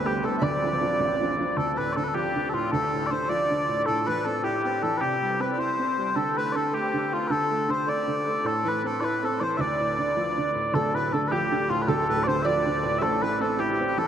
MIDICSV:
0, 0, Header, 1, 5, 480
1, 0, Start_track
1, 0, Tempo, 381922
1, 528, Time_signature, 6, 3, 24, 8
1, 17689, End_track
2, 0, Start_track
2, 0, Title_t, "Bagpipes"
2, 0, Program_c, 0, 109
2, 79, Note_on_c, 0, 67, 66
2, 310, Note_off_c, 0, 67, 0
2, 310, Note_on_c, 0, 69, 80
2, 542, Note_off_c, 0, 69, 0
2, 542, Note_on_c, 0, 74, 97
2, 1975, Note_off_c, 0, 74, 0
2, 1975, Note_on_c, 0, 69, 104
2, 2233, Note_off_c, 0, 69, 0
2, 2233, Note_on_c, 0, 71, 79
2, 2421, Note_off_c, 0, 71, 0
2, 2421, Note_on_c, 0, 74, 75
2, 2469, Note_off_c, 0, 74, 0
2, 2469, Note_on_c, 0, 69, 75
2, 2564, Note_off_c, 0, 69, 0
2, 2564, Note_on_c, 0, 71, 55
2, 2620, Note_off_c, 0, 71, 0
2, 2620, Note_on_c, 0, 69, 55
2, 2689, Note_off_c, 0, 69, 0
2, 2689, Note_on_c, 0, 67, 88
2, 3133, Note_off_c, 0, 67, 0
2, 3133, Note_on_c, 0, 69, 75
2, 3187, Note_off_c, 0, 69, 0
2, 3187, Note_on_c, 0, 65, 75
2, 3411, Note_off_c, 0, 65, 0
2, 3411, Note_on_c, 0, 69, 102
2, 3852, Note_off_c, 0, 69, 0
2, 3852, Note_on_c, 0, 74, 78
2, 3905, Note_off_c, 0, 74, 0
2, 3905, Note_on_c, 0, 72, 78
2, 4134, Note_off_c, 0, 72, 0
2, 4134, Note_on_c, 0, 74, 88
2, 4851, Note_off_c, 0, 74, 0
2, 4851, Note_on_c, 0, 69, 113
2, 5114, Note_off_c, 0, 69, 0
2, 5114, Note_on_c, 0, 71, 84
2, 5339, Note_off_c, 0, 71, 0
2, 5339, Note_on_c, 0, 69, 84
2, 5577, Note_off_c, 0, 69, 0
2, 5577, Note_on_c, 0, 67, 78
2, 6064, Note_off_c, 0, 67, 0
2, 6064, Note_on_c, 0, 69, 87
2, 6253, Note_off_c, 0, 69, 0
2, 6253, Note_on_c, 0, 71, 102
2, 6294, Note_off_c, 0, 71, 0
2, 6294, Note_on_c, 0, 67, 102
2, 6797, Note_off_c, 0, 67, 0
2, 6797, Note_on_c, 0, 71, 77
2, 7027, Note_off_c, 0, 71, 0
2, 7027, Note_on_c, 0, 72, 81
2, 7741, Note_off_c, 0, 72, 0
2, 7741, Note_on_c, 0, 69, 108
2, 8010, Note_off_c, 0, 69, 0
2, 8010, Note_on_c, 0, 71, 76
2, 8195, Note_off_c, 0, 71, 0
2, 8195, Note_on_c, 0, 74, 73
2, 8239, Note_off_c, 0, 74, 0
2, 8239, Note_on_c, 0, 69, 73
2, 8468, Note_off_c, 0, 69, 0
2, 8468, Note_on_c, 0, 67, 81
2, 8964, Note_off_c, 0, 67, 0
2, 8964, Note_on_c, 0, 65, 72
2, 9142, Note_off_c, 0, 65, 0
2, 9142, Note_on_c, 0, 71, 101
2, 9190, Note_off_c, 0, 71, 0
2, 9190, Note_on_c, 0, 69, 101
2, 9683, Note_off_c, 0, 69, 0
2, 9683, Note_on_c, 0, 72, 75
2, 9914, Note_off_c, 0, 72, 0
2, 9914, Note_on_c, 0, 74, 94
2, 10638, Note_off_c, 0, 74, 0
2, 10638, Note_on_c, 0, 69, 110
2, 10915, Note_off_c, 0, 69, 0
2, 10915, Note_on_c, 0, 71, 82
2, 11146, Note_off_c, 0, 71, 0
2, 11146, Note_on_c, 0, 69, 65
2, 11318, Note_off_c, 0, 69, 0
2, 11318, Note_on_c, 0, 74, 94
2, 11366, Note_off_c, 0, 74, 0
2, 11366, Note_on_c, 0, 71, 94
2, 11627, Note_off_c, 0, 71, 0
2, 11627, Note_on_c, 0, 69, 79
2, 11814, Note_off_c, 0, 69, 0
2, 11814, Note_on_c, 0, 74, 83
2, 11855, Note_off_c, 0, 74, 0
2, 11855, Note_on_c, 0, 72, 83
2, 12027, Note_off_c, 0, 72, 0
2, 12027, Note_on_c, 0, 76, 107
2, 12075, Note_off_c, 0, 76, 0
2, 12075, Note_on_c, 0, 74, 107
2, 13502, Note_off_c, 0, 74, 0
2, 13502, Note_on_c, 0, 69, 105
2, 13764, Note_off_c, 0, 69, 0
2, 13764, Note_on_c, 0, 71, 92
2, 13988, Note_off_c, 0, 71, 0
2, 13988, Note_on_c, 0, 69, 91
2, 14179, Note_off_c, 0, 69, 0
2, 14179, Note_on_c, 0, 71, 92
2, 14221, Note_off_c, 0, 71, 0
2, 14221, Note_on_c, 0, 67, 92
2, 14699, Note_off_c, 0, 67, 0
2, 14699, Note_on_c, 0, 65, 85
2, 14855, Note_off_c, 0, 65, 0
2, 14855, Note_on_c, 0, 71, 70
2, 14936, Note_off_c, 0, 71, 0
2, 14936, Note_on_c, 0, 69, 124
2, 15377, Note_off_c, 0, 69, 0
2, 15377, Note_on_c, 0, 74, 92
2, 15429, Note_off_c, 0, 74, 0
2, 15430, Note_on_c, 0, 72, 92
2, 15614, Note_off_c, 0, 72, 0
2, 15614, Note_on_c, 0, 76, 95
2, 15661, Note_off_c, 0, 76, 0
2, 15661, Note_on_c, 0, 74, 95
2, 16318, Note_off_c, 0, 74, 0
2, 16318, Note_on_c, 0, 76, 114
2, 16368, Note_off_c, 0, 76, 0
2, 16368, Note_on_c, 0, 69, 114
2, 16618, Note_off_c, 0, 69, 0
2, 16618, Note_on_c, 0, 71, 89
2, 16859, Note_off_c, 0, 71, 0
2, 16859, Note_on_c, 0, 69, 88
2, 17086, Note_off_c, 0, 69, 0
2, 17086, Note_on_c, 0, 67, 93
2, 17573, Note_off_c, 0, 67, 0
2, 17573, Note_on_c, 0, 69, 90
2, 17677, Note_off_c, 0, 69, 0
2, 17689, End_track
3, 0, Start_track
3, 0, Title_t, "Accordion"
3, 0, Program_c, 1, 21
3, 0, Note_on_c, 1, 71, 72
3, 320, Note_on_c, 1, 69, 64
3, 327, Note_off_c, 1, 71, 0
3, 458, Note_off_c, 1, 69, 0
3, 468, Note_on_c, 1, 76, 49
3, 540, Note_off_c, 1, 76, 0
3, 550, Note_on_c, 1, 74, 74
3, 1702, Note_off_c, 1, 74, 0
3, 1983, Note_on_c, 1, 69, 76
3, 2162, Note_off_c, 1, 69, 0
3, 2192, Note_on_c, 1, 72, 60
3, 2234, Note_on_c, 1, 71, 81
3, 2247, Note_off_c, 1, 72, 0
3, 2446, Note_off_c, 1, 71, 0
3, 2463, Note_on_c, 1, 69, 80
3, 2692, Note_on_c, 1, 67, 70
3, 2698, Note_off_c, 1, 69, 0
3, 3190, Note_on_c, 1, 65, 70
3, 3199, Note_off_c, 1, 67, 0
3, 3399, Note_off_c, 1, 65, 0
3, 3418, Note_on_c, 1, 69, 82
3, 3908, Note_on_c, 1, 72, 81
3, 3923, Note_off_c, 1, 69, 0
3, 4134, Note_on_c, 1, 74, 85
3, 4142, Note_off_c, 1, 72, 0
3, 4804, Note_off_c, 1, 74, 0
3, 4857, Note_on_c, 1, 69, 82
3, 5117, Note_on_c, 1, 71, 96
3, 5128, Note_off_c, 1, 69, 0
3, 5342, Note_on_c, 1, 69, 90
3, 5353, Note_off_c, 1, 71, 0
3, 5556, Note_off_c, 1, 69, 0
3, 5567, Note_on_c, 1, 67, 84
3, 5805, Note_off_c, 1, 67, 0
3, 5824, Note_on_c, 1, 67, 83
3, 6056, Note_on_c, 1, 69, 81
3, 6067, Note_off_c, 1, 67, 0
3, 6285, Note_on_c, 1, 67, 77
3, 6297, Note_off_c, 1, 69, 0
3, 6788, Note_on_c, 1, 71, 74
3, 6798, Note_off_c, 1, 67, 0
3, 6922, Note_off_c, 1, 71, 0
3, 6932, Note_on_c, 1, 74, 50
3, 7016, Note_off_c, 1, 74, 0
3, 7019, Note_on_c, 1, 72, 76
3, 7742, Note_on_c, 1, 69, 80
3, 7760, Note_off_c, 1, 72, 0
3, 7986, Note_off_c, 1, 69, 0
3, 8010, Note_on_c, 1, 71, 89
3, 8237, Note_on_c, 1, 69, 79
3, 8241, Note_off_c, 1, 71, 0
3, 8454, Note_on_c, 1, 67, 72
3, 8468, Note_off_c, 1, 69, 0
3, 8954, Note_on_c, 1, 65, 72
3, 8964, Note_off_c, 1, 67, 0
3, 9180, Note_on_c, 1, 69, 83
3, 9187, Note_off_c, 1, 65, 0
3, 9687, Note_off_c, 1, 69, 0
3, 9688, Note_on_c, 1, 72, 77
3, 9899, Note_on_c, 1, 74, 79
3, 9914, Note_off_c, 1, 72, 0
3, 10629, Note_on_c, 1, 69, 79
3, 10641, Note_off_c, 1, 74, 0
3, 10867, Note_on_c, 1, 71, 77
3, 10896, Note_off_c, 1, 69, 0
3, 11087, Note_off_c, 1, 71, 0
3, 11122, Note_on_c, 1, 69, 86
3, 11329, Note_on_c, 1, 71, 69
3, 11352, Note_off_c, 1, 69, 0
3, 11596, Note_on_c, 1, 69, 74
3, 11607, Note_off_c, 1, 71, 0
3, 11824, Note_on_c, 1, 72, 73
3, 11835, Note_off_c, 1, 69, 0
3, 12052, Note_on_c, 1, 74, 80
3, 12062, Note_off_c, 1, 72, 0
3, 13217, Note_off_c, 1, 74, 0
3, 13490, Note_on_c, 1, 69, 80
3, 13739, Note_off_c, 1, 69, 0
3, 13765, Note_on_c, 1, 71, 80
3, 13991, Note_on_c, 1, 69, 75
3, 13997, Note_off_c, 1, 71, 0
3, 14112, Note_off_c, 1, 69, 0
3, 14131, Note_on_c, 1, 69, 45
3, 14216, Note_off_c, 1, 69, 0
3, 14222, Note_on_c, 1, 67, 76
3, 14702, Note_on_c, 1, 65, 82
3, 14725, Note_off_c, 1, 67, 0
3, 14928, Note_on_c, 1, 69, 84
3, 14939, Note_off_c, 1, 65, 0
3, 15177, Note_off_c, 1, 69, 0
3, 15195, Note_on_c, 1, 71, 100
3, 15408, Note_off_c, 1, 71, 0
3, 15427, Note_on_c, 1, 72, 87
3, 15654, Note_on_c, 1, 74, 90
3, 15661, Note_off_c, 1, 72, 0
3, 16365, Note_on_c, 1, 69, 82
3, 16393, Note_off_c, 1, 74, 0
3, 16610, Note_on_c, 1, 71, 99
3, 16614, Note_off_c, 1, 69, 0
3, 16833, Note_off_c, 1, 71, 0
3, 16850, Note_on_c, 1, 69, 84
3, 17070, Note_on_c, 1, 67, 83
3, 17090, Note_off_c, 1, 69, 0
3, 17223, Note_off_c, 1, 67, 0
3, 17242, Note_on_c, 1, 67, 70
3, 17397, Note_off_c, 1, 67, 0
3, 17416, Note_on_c, 1, 67, 79
3, 17564, Note_on_c, 1, 69, 84
3, 17579, Note_off_c, 1, 67, 0
3, 17689, Note_off_c, 1, 69, 0
3, 17689, End_track
4, 0, Start_track
4, 0, Title_t, "Five-string banjo"
4, 0, Program_c, 2, 105
4, 70, Note_on_c, 2, 67, 68
4, 295, Note_on_c, 2, 69, 67
4, 306, Note_off_c, 2, 67, 0
4, 523, Note_on_c, 2, 74, 91
4, 533, Note_off_c, 2, 69, 0
4, 1689, Note_off_c, 2, 74, 0
4, 13514, Note_on_c, 2, 69, 97
4, 13752, Note_off_c, 2, 69, 0
4, 13787, Note_on_c, 2, 71, 69
4, 13987, Note_off_c, 2, 71, 0
4, 14001, Note_on_c, 2, 69, 74
4, 14207, Note_off_c, 2, 69, 0
4, 14230, Note_on_c, 2, 67, 89
4, 14703, Note_on_c, 2, 65, 69
4, 14729, Note_off_c, 2, 67, 0
4, 14917, Note_off_c, 2, 65, 0
4, 14936, Note_on_c, 2, 69, 90
4, 15091, Note_off_c, 2, 69, 0
4, 15106, Note_on_c, 2, 69, 67
4, 15272, Note_off_c, 2, 69, 0
4, 15285, Note_on_c, 2, 69, 79
4, 15410, Note_off_c, 2, 69, 0
4, 15415, Note_on_c, 2, 72, 85
4, 15632, Note_off_c, 2, 72, 0
4, 15644, Note_on_c, 2, 74, 96
4, 16105, Note_off_c, 2, 74, 0
4, 16128, Note_on_c, 2, 71, 76
4, 16347, Note_off_c, 2, 71, 0
4, 16357, Note_on_c, 2, 69, 88
4, 16609, Note_off_c, 2, 69, 0
4, 16632, Note_on_c, 2, 71, 74
4, 16845, Note_off_c, 2, 71, 0
4, 16861, Note_on_c, 2, 69, 88
4, 17077, Note_on_c, 2, 67, 77
4, 17096, Note_off_c, 2, 69, 0
4, 17539, Note_off_c, 2, 67, 0
4, 17570, Note_on_c, 2, 69, 74
4, 17689, Note_off_c, 2, 69, 0
4, 17689, End_track
5, 0, Start_track
5, 0, Title_t, "Upright piano"
5, 0, Program_c, 3, 0
5, 0, Note_on_c, 3, 31, 61
5, 0, Note_on_c, 3, 38, 73
5, 67, Note_on_c, 3, 55, 54
5, 69, Note_on_c, 3, 57, 46
5, 70, Note_on_c, 3, 59, 58
5, 278, Note_off_c, 3, 55, 0
5, 279, Note_off_c, 3, 57, 0
5, 281, Note_off_c, 3, 38, 0
5, 285, Note_off_c, 3, 59, 0
5, 296, Note_on_c, 3, 55, 48
5, 298, Note_on_c, 3, 57, 46
5, 304, Note_on_c, 3, 59, 54
5, 472, Note_off_c, 3, 31, 0
5, 480, Note_off_c, 3, 55, 0
5, 481, Note_off_c, 3, 57, 0
5, 485, Note_off_c, 3, 59, 0
5, 524, Note_on_c, 3, 38, 76
5, 526, Note_on_c, 3, 26, 62
5, 796, Note_on_c, 3, 53, 44
5, 799, Note_on_c, 3, 60, 47
5, 804, Note_on_c, 3, 62, 55
5, 1000, Note_off_c, 3, 53, 0
5, 1001, Note_off_c, 3, 60, 0
5, 1004, Note_off_c, 3, 38, 0
5, 1005, Note_off_c, 3, 62, 0
5, 1019, Note_on_c, 3, 53, 55
5, 1020, Note_on_c, 3, 60, 43
5, 1024, Note_on_c, 3, 62, 48
5, 1254, Note_on_c, 3, 33, 72
5, 1414, Note_off_c, 3, 53, 0
5, 1415, Note_off_c, 3, 60, 0
5, 1417, Note_off_c, 3, 62, 0
5, 1516, Note_on_c, 3, 53, 49
5, 1522, Note_on_c, 3, 60, 46
5, 1527, Note_on_c, 3, 62, 53
5, 1719, Note_off_c, 3, 53, 0
5, 1726, Note_off_c, 3, 60, 0
5, 1729, Note_off_c, 3, 33, 0
5, 1733, Note_off_c, 3, 62, 0
5, 1738, Note_on_c, 3, 53, 50
5, 1745, Note_on_c, 3, 60, 40
5, 1752, Note_on_c, 3, 62, 54
5, 1919, Note_off_c, 3, 26, 0
5, 1922, Note_off_c, 3, 53, 0
5, 1926, Note_off_c, 3, 60, 0
5, 1931, Note_off_c, 3, 62, 0
5, 1971, Note_on_c, 3, 38, 65
5, 2246, Note_on_c, 3, 45, 42
5, 2462, Note_off_c, 3, 45, 0
5, 2478, Note_on_c, 3, 50, 46
5, 2692, Note_off_c, 3, 50, 0
5, 2693, Note_on_c, 3, 53, 47
5, 2949, Note_off_c, 3, 53, 0
5, 2963, Note_on_c, 3, 50, 54
5, 3181, Note_off_c, 3, 50, 0
5, 3184, Note_on_c, 3, 45, 52
5, 3369, Note_off_c, 3, 38, 0
5, 3405, Note_off_c, 3, 45, 0
5, 3429, Note_on_c, 3, 38, 63
5, 3686, Note_on_c, 3, 45, 43
5, 3903, Note_off_c, 3, 45, 0
5, 3911, Note_on_c, 3, 50, 55
5, 4129, Note_off_c, 3, 50, 0
5, 4142, Note_on_c, 3, 53, 55
5, 4395, Note_off_c, 3, 53, 0
5, 4407, Note_on_c, 3, 50, 49
5, 4624, Note_off_c, 3, 50, 0
5, 4637, Note_on_c, 3, 45, 48
5, 4820, Note_off_c, 3, 38, 0
5, 4851, Note_off_c, 3, 45, 0
5, 4870, Note_on_c, 3, 45, 65
5, 5130, Note_on_c, 3, 52, 51
5, 5346, Note_off_c, 3, 52, 0
5, 5357, Note_on_c, 3, 60, 49
5, 5573, Note_off_c, 3, 60, 0
5, 5581, Note_on_c, 3, 64, 55
5, 5835, Note_off_c, 3, 64, 0
5, 5845, Note_on_c, 3, 60, 50
5, 6064, Note_off_c, 3, 60, 0
5, 6073, Note_on_c, 3, 52, 48
5, 6261, Note_off_c, 3, 45, 0
5, 6292, Note_off_c, 3, 52, 0
5, 6299, Note_on_c, 3, 48, 58
5, 6563, Note_on_c, 3, 55, 46
5, 6783, Note_off_c, 3, 55, 0
5, 6785, Note_on_c, 3, 60, 59
5, 7008, Note_off_c, 3, 60, 0
5, 7010, Note_on_c, 3, 64, 56
5, 7270, Note_off_c, 3, 64, 0
5, 7281, Note_on_c, 3, 60, 55
5, 7503, Note_off_c, 3, 60, 0
5, 7519, Note_on_c, 3, 55, 49
5, 7696, Note_off_c, 3, 48, 0
5, 7736, Note_off_c, 3, 55, 0
5, 7740, Note_on_c, 3, 50, 64
5, 8003, Note_on_c, 3, 57, 51
5, 8220, Note_off_c, 3, 50, 0
5, 8224, Note_off_c, 3, 57, 0
5, 8239, Note_on_c, 3, 50, 46
5, 8454, Note_on_c, 3, 57, 53
5, 8456, Note_off_c, 3, 50, 0
5, 8713, Note_off_c, 3, 57, 0
5, 8720, Note_on_c, 3, 50, 55
5, 8943, Note_off_c, 3, 50, 0
5, 8948, Note_on_c, 3, 57, 45
5, 9171, Note_off_c, 3, 57, 0
5, 9176, Note_on_c, 3, 50, 74
5, 9437, Note_on_c, 3, 57, 52
5, 9639, Note_off_c, 3, 50, 0
5, 9658, Note_on_c, 3, 50, 53
5, 9662, Note_off_c, 3, 57, 0
5, 9886, Note_off_c, 3, 50, 0
5, 9888, Note_on_c, 3, 57, 54
5, 10150, Note_off_c, 3, 57, 0
5, 10150, Note_on_c, 3, 50, 54
5, 10378, Note_off_c, 3, 50, 0
5, 10389, Note_on_c, 3, 57, 50
5, 10611, Note_off_c, 3, 57, 0
5, 10613, Note_on_c, 3, 45, 68
5, 10870, Note_on_c, 3, 52, 49
5, 11098, Note_off_c, 3, 52, 0
5, 11109, Note_on_c, 3, 60, 46
5, 11331, Note_off_c, 3, 60, 0
5, 11333, Note_on_c, 3, 64, 52
5, 11593, Note_off_c, 3, 64, 0
5, 11602, Note_on_c, 3, 60, 51
5, 11824, Note_off_c, 3, 60, 0
5, 11825, Note_on_c, 3, 52, 49
5, 12013, Note_off_c, 3, 45, 0
5, 12049, Note_off_c, 3, 52, 0
5, 12052, Note_on_c, 3, 38, 64
5, 12319, Note_on_c, 3, 45, 41
5, 12542, Note_off_c, 3, 45, 0
5, 12552, Note_on_c, 3, 50, 46
5, 12772, Note_off_c, 3, 50, 0
5, 12778, Note_on_c, 3, 53, 52
5, 13035, Note_off_c, 3, 53, 0
5, 13043, Note_on_c, 3, 50, 48
5, 13263, Note_off_c, 3, 50, 0
5, 13266, Note_on_c, 3, 45, 50
5, 13451, Note_off_c, 3, 38, 0
5, 13489, Note_off_c, 3, 45, 0
5, 13497, Note_on_c, 3, 26, 58
5, 13497, Note_on_c, 3, 38, 72
5, 13749, Note_on_c, 3, 45, 48
5, 13976, Note_off_c, 3, 45, 0
5, 13992, Note_on_c, 3, 50, 63
5, 14211, Note_off_c, 3, 50, 0
5, 14225, Note_on_c, 3, 53, 53
5, 14474, Note_on_c, 3, 50, 57
5, 14477, Note_off_c, 3, 53, 0
5, 14698, Note_off_c, 3, 50, 0
5, 14705, Note_on_c, 3, 45, 57
5, 14884, Note_off_c, 3, 26, 0
5, 14891, Note_off_c, 3, 38, 0
5, 14927, Note_off_c, 3, 45, 0
5, 14934, Note_on_c, 3, 38, 69
5, 14935, Note_on_c, 3, 26, 70
5, 15200, Note_on_c, 3, 45, 58
5, 15420, Note_off_c, 3, 45, 0
5, 15429, Note_on_c, 3, 50, 61
5, 15648, Note_off_c, 3, 50, 0
5, 15651, Note_on_c, 3, 53, 61
5, 15908, Note_off_c, 3, 53, 0
5, 15914, Note_on_c, 3, 50, 50
5, 16136, Note_off_c, 3, 50, 0
5, 16144, Note_on_c, 3, 45, 51
5, 16321, Note_off_c, 3, 26, 0
5, 16328, Note_off_c, 3, 38, 0
5, 16348, Note_off_c, 3, 45, 0
5, 16367, Note_on_c, 3, 33, 64
5, 16367, Note_on_c, 3, 45, 65
5, 16624, Note_on_c, 3, 52, 51
5, 16849, Note_on_c, 3, 60, 59
5, 16850, Note_off_c, 3, 52, 0
5, 17076, Note_off_c, 3, 60, 0
5, 17086, Note_on_c, 3, 64, 68
5, 17344, Note_off_c, 3, 64, 0
5, 17344, Note_on_c, 3, 60, 53
5, 17566, Note_on_c, 3, 52, 54
5, 17569, Note_off_c, 3, 60, 0
5, 17689, Note_off_c, 3, 33, 0
5, 17689, Note_off_c, 3, 45, 0
5, 17689, Note_off_c, 3, 52, 0
5, 17689, End_track
0, 0, End_of_file